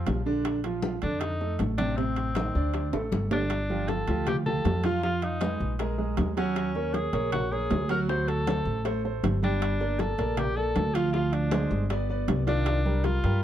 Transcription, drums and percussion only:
0.07 high bongo soft
0.07 low bongo medium
0.07 high conga medium
0.07 high timbale medium
0.07 low timbale medium
0.26 high bongo soft
0.45 high bongo medium
0.45 high conga soft
0.45 high timbale loud
0.64 high bongo soft
0.64 high conga soft
0.64 high timbale medium
0.82 high bongo medium
0.82 high conga medium
1.02 high conga soft
1.02 high timbale medium
1.21 high bongo medium
1.21 high conga soft
1.21 high timbale medium
1.41 high bongo soft
1.41 high conga soft
1.59 high bongo soft
1.59 low bongo medium
1.59 high conga medium
1.59 high timbale medium
1.78 high bongo soft
1.78 high conga medium
1.78 high timbale medium
1.98 high bongo medium
1.98 high conga soft
2.16 high bongo soft
2.16 high conga soft
2.16 high timbale medium
2.35 high bongo medium
2.35 high conga loud
2.35 high timbale medium
2.55 high conga soft
2.74 high bongo medium
2.74 high conga soft
2.74 high timbale medium
2.93 high bongo medium
2.93 high conga soft
2.93 high timbale medium
3.12 high bongo medium
3.12 high conga medium
3.31 low bongo loud
3.31 low timbale loud
3.50 high bongo medium
3.50 high conga soft
3.50 high timbale loud
3.70 high bongo soft
3.70 high conga soft
3.88 high bongo medium
3.88 high conga medium
3.88 high timbale medium
4.08 high bongo soft
4.08 high conga soft
4.08 high timbale medium
4.27 high bongo medium
4.27 high conga soft
4.27 low conga medium
4.27 high timbale loud
4.46 high conga soft
4.46 low conga medium
4.65 high bongo soft
4.65 low bongo medium
4.65 high conga medium
4.65 high timbale medium
4.65 low timbale medium
4.84 high bongo soft
4.84 high conga medium
4.84 high timbale medium
5.03 high bongo medium
5.03 high conga soft
5.22 high bongo soft
5.22 high conga soft
5.22 high timbale medium
5.41 high bongo medium
5.41 high conga loud
5.41 high timbale medium
5.61 high bongo soft
5.79 high bongo medium
5.79 high conga soft
5.79 high timbale medium
5.99 high conga soft
6.17 high bongo soft
6.17 low bongo medium
6.17 high conga medium
6.17 high timbale loud
6.17 low timbale medium
6.37 high bongo soft
6.37 high conga soft
6.37 high timbale medium
6.56 high bongo medium
6.56 high conga soft
6.56 high timbale loud
6.75 high bongo soft
6.75 high conga soft
6.94 high bongo medium
6.94 high conga medium
6.94 high timbale medium
7.13 high bongo soft
7.13 high conga soft
7.13 high timbale medium
7.32 high bongo medium
7.32 high conga soft
7.32 low conga medium
7.32 high timbale loud
7.53 high conga soft
7.71 high bongo soft
7.71 low bongo medium
7.71 high conga medium
7.71 high timbale medium
7.71 low timbale medium
7.89 high bongo soft
7.89 high timbale medium
8.09 high bongo medium
8.09 high conga soft
8.28 high bongo soft
8.28 high conga soft
8.28 high timbale medium
8.47 high bongo medium
8.47 high conga loud
8.47 high timbale medium
8.67 high bongo soft
8.85 high bongo medium
8.85 high conga soft
8.85 high timbale medium
9.05 high conga soft
9.24 high bongo soft
9.24 low bongo medium
9.24 high conga medium
9.24 high timbale loud
9.24 low timbale medium
9.43 high bongo soft
9.43 high conga soft
9.43 high timbale medium
9.62 high bongo medium
9.62 high conga soft
9.62 high timbale loud
9.81 high bongo soft
9.81 high conga soft
9.99 high bongo medium
9.99 high conga medium
9.99 high timbale medium
10.18 high bongo soft
10.18 high conga soft
10.18 high timbale medium
10.37 high bongo medium
10.37 high conga soft
10.37 low conga medium
10.37 high timbale loud
10.57 high conga soft
10.76 high bongo soft
10.76 low bongo medium
10.76 high conga medium
10.76 high timbale medium
10.95 high bongo soft
10.95 high timbale loud
11.14 high bongo medium
11.14 high conga soft
11.33 high bongo soft
11.33 high conga soft
11.33 high timbale medium
11.51 high bongo medium
11.51 high conga loud
11.51 high timbale loud
11.71 high bongo soft
11.90 high bongo medium
11.90 high conga soft
11.90 high timbale medium
12.09 high conga soft
12.28 high bongo soft
12.28 low bongo medium
12.28 high conga medium
12.28 high timbale loud
12.28 low timbale medium
12.47 high bongo soft
12.47 high conga soft
12.47 high timbale medium
12.66 high bongo medium
12.66 high conga soft
12.66 high timbale loud
12.86 high bongo soft
12.86 high conga soft
13.04 high bongo medium
13.04 high conga medium
13.04 high timbale medium
13.24 high bongo soft
13.24 high conga soft
13.24 high timbale medium

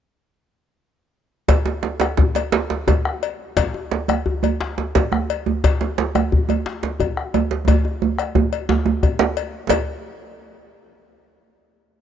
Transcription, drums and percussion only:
1.48 bombo low medium
1.48 cowbell medium
1.48 djembe slap medium
1.48 djembe bass medium
1.65 djembe slap medium
1.65 djembe tone soft
1.83 bombo rim soft
1.83 djembe slap medium
2.00 bombo rim medium
2.00 cowbell soft
2.00 djembe slap medium
2.17 bombo low loud
2.17 djembe slap medium
2.17 djembe bass medium
2.35 cowbell medium
2.35 djembe slap medium
2.52 djembe slap loud
2.52 djembe slap medium
2.70 djembe slap medium
2.70 djembe tone soft
2.87 bombo rim soft
2.87 bombo low medium
2.87 cowbell soft
2.87 djembe slap medium
2.87 djembe bass medium
3.05 bombo rim medium
3.23 cowbell soft
3.57 bombo low medium
3.57 cowbell medium
3.57 djembe slap medium
3.57 djembe bass medium
3.74 djembe tone medium
3.91 bombo rim soft
3.91 djembe slap medium
4.08 bombo rim medium
4.08 cowbell soft
4.08 djembe tone medium
4.26 djembe bass medium
4.43 cowbell soft
4.43 djembe tone medium
4.61 djembe slap medium
4.78 djembe slap medium
4.78 djembe tone soft
4.95 bombo rim soft
4.95 bombo low medium
4.95 cowbell soft
4.95 djembe slap medium
4.95 djembe bass medium
5.12 bombo rim medium
5.12 djembe tone medium
5.30 cowbell soft
5.46 djembe tone medium
5.64 bombo low medium
5.64 cowbell medium
5.64 djembe slap medium
5.64 djembe bass medium
5.81 djembe slap medium
5.81 djembe tone soft
5.98 bombo rim soft
5.98 djembe slap medium
6.15 bombo rim medium
6.15 cowbell soft
6.15 djembe tone medium
6.32 bombo low medium
6.32 djembe bass medium
6.49 cowbell soft
6.49 djembe tone medium
6.66 djembe slap medium
6.83 djembe slap medium
6.83 djembe tone soft
7.00 bombo rim soft
7.00 bombo low medium
7.00 cowbell soft
7.00 djembe bass medium
7.17 bombo rim medium
7.34 cowbell soft
7.34 djembe tone medium
7.51 djembe slap medium
7.68 bombo low medium
7.68 cowbell medium
7.68 djembe slap medium
7.68 djembe tone loud
7.68 djembe bass medium
7.85 djembe tone medium
8.02 djembe tone medium
8.18 bombo rim medium
8.18 cowbell soft
8.35 bombo rim soft
8.35 bombo low medium
8.35 djembe tone medium
8.35 djembe bass medium
8.53 cowbell soft
8.69 djembe slap medium
8.69 djembe tone loud
8.85 djembe slap soft
8.85 djembe tone medium
9.03 bombo rim soft
9.03 bombo low medium
9.03 cowbell soft
9.03 djembe bass medium
9.19 bombo rim medium
9.19 djembe slap loud
9.37 cowbell soft
9.69 bombo low medium
9.69 cowbell medium
9.69 djembe slap loud
9.69 djembe bass medium

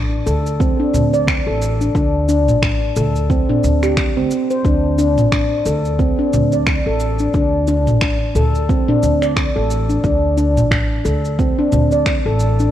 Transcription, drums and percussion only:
0.27 cabasa medium
0.47 cabasa soft
0.60 kick loud
0.60 cabasa soft
0.95 mid tom medium
0.95 cabasa medium
1.14 cabasa soft
1.28 finger snap loud
1.28 kick loud
1.28 cabasa soft
1.62 cabasa medium
1.81 cabasa soft
1.95 kick loud
1.95 cabasa soft
2.29 cabasa medium
2.49 mid tom medium
2.49 cabasa soft
2.62 finger snap loud
2.62 kick medium
2.62 cabasa soft
2.96 mid tom medium
2.96 cabasa medium
3.16 cabasa soft
3.30 kick loud
3.30 cabasa soft
3.49 mid tom medium
3.64 cabasa medium
3.83 finger snap soft
3.83 cabasa soft
3.97 finger snap medium
3.97 kick loud
3.97 cabasa soft
4.31 cabasa medium
4.51 cabasa soft
4.65 kick medium
4.65 cabasa soft
4.99 cabasa medium
5.18 mid tom medium
5.18 cabasa soft
5.32 finger snap loud
5.32 kick medium
5.32 cabasa soft
5.66 cabasa medium
5.85 cabasa soft
5.99 kick medium
5.99 cabasa soft
6.33 mid tom medium
6.33 cabasa medium
6.52 cabasa soft
6.66 finger snap medium
6.66 kick medium
6.66 cabasa soft
7.00 cabasa medium
7.19 cabasa soft
7.34 kick medium
7.34 cabasa soft
7.68 cabasa medium
7.87 mid tom medium
7.87 cabasa soft
8.01 finger snap loud
8.01 kick medium
8.01 cabasa soft
8.35 mid tom medium
8.35 cabasa medium
8.55 cabasa soft
8.69 kick loud
8.69 cabasa soft
8.88 mid tom medium
9.03 cabasa medium
9.22 finger snap soft
9.22 cabasa soft
9.37 finger snap loud
9.37 kick medium
9.37 cabasa soft
9.71 cabasa medium
9.90 cabasa soft
10.04 kick medium
10.04 cabasa soft
10.38 cabasa medium
10.57 mid tom medium
10.57 cabasa soft
10.71 finger snap loud
10.71 kick medium
10.71 cabasa soft
11.05 cabasa medium
11.25 cabasa soft
11.39 kick medium
11.39 cabasa soft
11.72 mid tom medium
11.72 cabasa medium
11.91 cabasa soft
12.06 finger snap medium
12.06 kick medium
12.06 cabasa soft
12.40 cabasa medium
12.59 cabasa soft

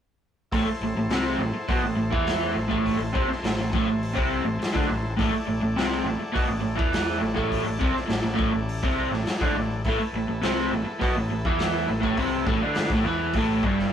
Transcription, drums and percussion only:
0.52 kick loud
0.52 open hi-hat medium
1.10 snare loud
1.10 open hi-hat medium
1.69 kick loud
1.69 open hi-hat medium
2.13 kick loud
2.27 snare loud
2.27 open hi-hat medium
2.71 kick loud
2.86 kick medium
2.86 open hi-hat medium
3.15 kick loud
3.32 snare soft
3.44 snare loud
3.44 open hi-hat medium
3.73 kick loud
4.03 open hi-hat medium
4.17 kick loud
4.62 snare loud
4.62 open hi-hat medium
4.75 kick loud
5.19 kick loud
5.19 open hi-hat soft
5.78 snare loud
5.78 open hi-hat medium
6.35 kick loud
6.35 open hi-hat medium
6.79 kick loud
6.93 snare loud
6.93 open hi-hat medium
7.37 kick medium
7.52 kick medium
7.52 open hi-hat medium
7.81 kick loud
7.96 snare soft
8.09 snare loud
8.09 open hi-hat medium
8.39 kick loud
8.69 open hi-hat medium
8.83 kick loud
9.13 snare soft
9.26 snare loud
9.26 open hi-hat medium
9.41 kick loud
9.84 kick loud
9.84 open hi-hat medium
10.42 snare loud
10.42 open hi-hat soft
11.01 kick medium
11.01 open hi-hat medium
11.45 kick loud
11.59 snare loud
11.59 open hi-hat medium
12.03 kick loud
12.17 kick loud
12.17 open hi-hat medium
12.47 kick loud
12.75 snare loud
12.75 open hi-hat medium
12.90 kick loud
13.33 kick medium
13.33 open hi-hat medium
13.63 kick medium
13.79 snare soft

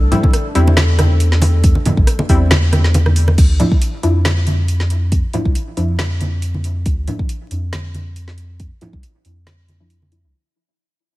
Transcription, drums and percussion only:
0.12 closed hi-hat medium
0.12 low conga medium
0.23 kick loud
0.23 muted conga medium
0.33 cross-stick medium
0.33 closed hi-hat medium
0.55 closed hi-hat medium
0.67 muted conga medium
0.77 snare loud
0.77 closed hi-hat medium
0.77 high conga medium
0.99 cross-stick medium
0.99 closed hi-hat medium
0.99 muted conga medium
0.99 high conga medium
1.20 closed hi-hat medium
1.32 snare soft
1.42 open hi-hat loud
1.42 muted conga medium
1.64 kick loud
1.64 closed hi-hat medium
1.75 muted conga medium
1.86 closed hi-hat medium
1.86 high conga medium
1.86 low conga medium
1.97 kick loud
2.07 cross-stick medium
2.07 closed hi-hat medium
2.19 muted conga medium
2.29 kick medium
2.29 open hi-hat medium
2.51 snare loud
2.51 closed hi-hat medium
2.51 muted conga medium
2.51 high conga medium
2.73 cross-stick medium
2.73 closed hi-hat medium
2.73 high conga medium
2.84 snare soft
2.94 closed hi-hat medium
2.94 muted conga medium
3.06 cross-stick medium
3.06 high conga medium
3.16 open hi-hat loud
3.28 cross-stick medium
3.28 muted conga medium
3.38 kick loud
3.38 closed hi-hat medium
3.38 crash medium
3.60 closed hi-hat medium
3.60 low conga medium
3.72 kick loud
3.82 closed hi-hat medium
4.03 closed hi-hat medium
4.25 snare loud
4.25 closed hi-hat medium
4.25 high conga medium
4.47 closed hi-hat medium
4.47 high conga medium
4.68 closed hi-hat medium
4.80 snare soft
4.90 closed hi-hat medium
5.12 kick loud
5.12 closed hi-hat medium
5.33 closed hi-hat medium
5.33 low conga medium
5.45 kick loud
5.55 closed hi-hat medium
5.77 closed hi-hat medium
5.99 snare loud
5.99 closed hi-hat medium
5.99 high conga medium
6.21 closed hi-hat medium
6.21 high conga medium
6.42 closed hi-hat medium
6.54 high conga medium
6.64 closed hi-hat medium
6.86 kick loud
6.86 closed hi-hat medium
7.08 closed hi-hat medium
7.08 low conga medium
7.19 kick loud
7.29 closed hi-hat medium
7.51 closed hi-hat medium
7.73 snare loud
7.73 closed hi-hat medium
7.73 high conga medium
7.94 closed hi-hat medium
7.94 high conga medium
8.16 closed hi-hat medium
8.28 snare soft
8.38 closed hi-hat soft
8.60 kick loud
8.60 closed hi-hat medium
8.81 closed hi-hat soft
8.81 low conga medium
8.93 kick loud
9.03 closed hi-hat medium
9.25 closed hi-hat medium
9.47 snare loud
9.47 closed hi-hat medium
9.47 high conga medium
9.68 closed hi-hat soft
9.68 high conga medium
9.90 closed hi-hat medium
10.02 high conga medium
10.12 closed hi-hat medium

